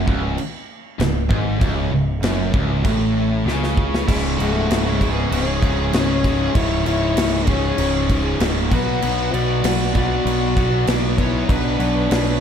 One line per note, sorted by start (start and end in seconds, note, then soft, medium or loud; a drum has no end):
0.07 0.36 C#1 loud
0.07 0.37 C#2 loud
0.07 kick loud
0.38 crash medium
0.99 1.29 C#1 medium
0.99 1.24 C#2 medium
0.99 snare loud
0.99 crash medium
1.30 1.59 G#1 medium
1.30 1.59 G#2 loud
1.30 kick loud
1.59 1.90 C#1 medium
1.59 1.91 C#2 medium
1.59 kick loud
1.59 crash medium
1.91 2.20 C#1 medium
1.91 2.17 C#2 medium
2.22 2.51 F#1 medium
2.22 2.53 F#2 loud
2.22 snare loud
2.22 crash medium
2.54 2.83 C#1 medium
2.54 2.84 C#2 loud
2.54 kick loud
2.85 3.43 A1 loud
2.85 3.46 A2 loud
2.85 kick loud
2.85 crash medium
3.45 4.04 C#2 medium
3.45 4.07 C#3 loud
3.45 snare medium
3.63 snare medium
3.77 kick medium
3.95 snare loud
4.07 4.36 C#1 medium
4.07 4.38 C#2 medium
4.07 4.38 G#2 medium
4.07 4.39 C#3 medium
4.07 4.22 G#3 medium
4.07 4.16 E4 medium
4.07 8.67 G#4 medium
4.07 8.67 C#5 medium
4.07 8.67 E5 medium
4.07 8.67 C#6 medium
4.07 kick loud
4.07 crash loud
4.07 crash medium
4.38 4.67 C#1 loud
4.38 4.70 C#2 medium
4.38 4.70 G#2 medium
4.38 4.71 C#3 medium
4.38 4.93 A3 loud
4.38 4.90 F#4 medium
4.38 crash medium
4.70 5.25 C#1 medium
4.70 5.01 C#2 medium
4.70 5.01 G#2 loud
4.70 5.01 C#3 loud
4.70 snare loud
4.70 crash loud
4.90 5.14 G#3 medium
4.90 5.11 E4 medium
5.01 5.31 C#2 medium
5.01 5.32 G#2 medium
5.01 5.32 C#3 medium
5.01 kick medium
5.01 crash medium
5.11 5.35 B3 medium
5.11 5.29 G#4 medium
5.31 5.59 C#1 loud
5.31 5.62 C#2 loud
5.31 5.62 G#2 medium
5.31 5.63 C#3 loud
5.31 5.93 C#4 loud
5.31 5.91 G#4 medium
5.31 crash medium
5.62 5.90 C#1 loud
5.62 5.92 C#2 medium
5.62 5.93 G#2 medium
5.62 5.93 C#3 medium
5.62 kick medium
5.62 crash medium
5.92 6.48 C#1 medium
5.92 6.23 C#2 medium
5.92 6.23 G#2 loud
5.92 6.24 C#3 loud
5.92 6.57 C#4 loud
5.92 6.51 G#4 medium
5.92 snare loud
5.92 crash medium
6.24 6.54 C#2 medium
6.24 6.54 G#2 loud
6.24 6.54 C#3 loud
6.24 kick medium
6.24 snare soft
6.24 crash medium
6.55 6.83 C#1 medium
6.55 6.84 C#2 medium
6.55 6.85 G#2 loud
6.55 6.85 C#3 loud
6.55 6.86 E4 loud
6.55 6.85 C#5 medium
6.55 kick loud
6.55 crash medium
6.85 7.14 C#1 medium
6.85 7.15 C#2 medium
6.85 7.16 G#2 medium
6.85 7.16 C#3 loud
6.85 7.49 E4 loud
6.85 7.47 C#5 medium
6.85 crash medium
7.16 7.72 C#1 medium
7.16 7.45 C#2 medium
7.16 7.46 G#2 medium
7.16 7.47 C#3 loud
7.16 snare loud
7.16 crash loud
7.47 7.77 C#2 medium
7.47 7.78 G#2 medium
7.47 7.78 C#3 loud
7.47 8.44 C#4 loud
7.47 8.44 G#4 medium
7.47 kick medium
7.47 crash medium
7.78 8.33 C#1 loud
7.78 8.08 C#2 medium
7.78 8.09 G#2 loud
7.78 8.10 C#3 loud
7.78 crash medium
8.10 8.39 C#2 medium
8.10 8.40 G#2 medium
8.10 8.40 C#3 medium
8.10 kick medium
8.10 crash medium
8.40 8.73 C#1 medium
8.40 8.69 C#2 loud
8.40 8.70 G#2 loud
8.40 8.70 C#3 loud
8.40 snare loud
8.40 crash medium
8.70 8.99 B1 loud
8.70 9.01 B2 medium
8.70 9.02 F#3 loud
8.70 9.35 B3 loud
8.70 9.02 B3 loud
8.70 12.40 D4 medium
8.70 9.29 F#4 medium
8.70 12.40 B4 medium
8.70 11.16 F#5 medium
8.70 kick loud
8.70 crash medium
9.01 9.30 B1 medium
9.01 9.32 B2 loud
9.01 9.33 F#3 medium
9.01 9.34 B3 loud
9.01 crash medium
9.33 9.60 B1 medium
9.33 9.63 B2 medium
9.33 9.64 F#3 loud
9.33 9.64 B3 loud
9.33 9.94 F#4 loud
9.33 9.95 D5 medium
9.33 crash medium
9.63 10.19 B1 medium
9.63 9.93 B2 medium
9.63 9.94 F#3 medium
9.63 9.96 B3 loud
9.63 snare loud
9.63 crash loud
9.94 10.24 B2 medium
9.94 10.25 F#3 medium
9.94 10.26 B3 loud
9.94 11.14 F#4 loud
9.94 11.15 D5 medium
9.94 kick medium
9.94 crash medium
10.25 10.53 B1 medium
10.25 10.55 B2 loud
10.25 10.56 F#3 loud
10.25 10.57 B3 loud
10.25 crash medium
10.56 10.84 B1 medium
10.56 10.86 B2 medium
10.56 10.86 F#3 medium
10.56 10.88 B3 loud
10.56 kick medium
10.56 crash medium
10.87 11.42 B1 medium
10.87 11.17 B2 loud
10.87 11.17 F#3 loud
10.87 11.19 B3 loud
10.87 snare loud
10.87 crash medium
11.17 11.47 B2 medium
11.17 11.47 F#3 medium
11.17 11.49 B3 loud
11.17 11.52 E4 loud
11.17 12.40 G#5 medium
11.17 kick medium
11.17 crash medium
11.21 11.48 C#5 medium
11.48 11.76 B1 medium
11.48 11.77 B2 medium
11.48 11.77 F#3 medium
11.48 11.79 B3 medium
11.48 12.40 D4 loud
11.48 12.40 B4 medium
11.48 kick loud
11.48 crash medium
11.78 12.07 B1 medium
11.78 12.07 B2 medium
11.78 12.08 F#3 medium
11.78 12.09 B3 medium
11.78 crash medium
12.09 12.40 B1 medium
12.09 12.39 B2 medium
12.09 12.39 F#3 medium
12.09 12.40 B3 medium
12.09 snare loud
12.09 crash loud